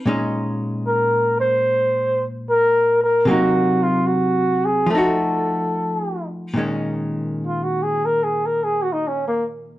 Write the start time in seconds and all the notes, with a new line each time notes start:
0.06 A#2 G#3 C#4 D#4
0.87 A#4
1.40 C5
2.50 A#4
3.04 A#4
3.25 C3 F#3 A#3 F#4
3.31 D#4
3.83 F4
4.07 F#4
4.65 G#4
4.86 F3 A3
4.92 D#4 A4
4.98 F#4
6.54 A#2 D#3 G#3
6.59 C#4
7.47 F4
7.63 F#4
7.83 G#4
8.05 A#4
8.24 G#4
8.46 A#4
8.64 G#4
8.83 F#4
8.93 D#4
9.08 C#4
9.28 A#3